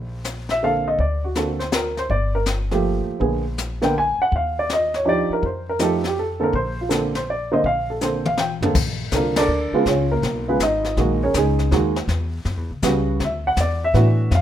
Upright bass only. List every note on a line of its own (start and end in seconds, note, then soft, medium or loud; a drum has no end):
0.00 0.94 A#1 medium
0.99 2.06 D2 medium
2.09 3.04 G1 medium
3.07 muted upright bass stroke soft
3.20 4.15 A#1 medium
4.19 muted upright bass stroke soft
4.32 5.26 D#2 medium
5.30 muted upright bass stroke soft
5.42 6.49 F2 medium
6.53 7.60 A#1 medium
7.64 8.59 A#1 medium
8.61 8.74 F2 medium
8.75 9.11 A#1 medium
9.12 9.47 C2 medium
9.48 9.71 D2 medium
9.72 muted upright bass stroke soft
9.86 10.22 C#2 medium
10.22 10.59 B1 medium
10.60 10.96 G#1 medium
10.97 11.33 A#1 medium
11.34 11.70 C#2 loud
11.71 12.07 D#2 loud
12.08 12.44 E2 medium
12.45 12.57 F#2 medium
12.57 12.70 E2 medium
12.71 12.82 C#2 medium
12.82 13.18 C#2 medium
13.19 13.55 D2 medium
13.57 13.92 E2 medium
13.94 14.29 A2 medium
14.31 14.41 F2 medium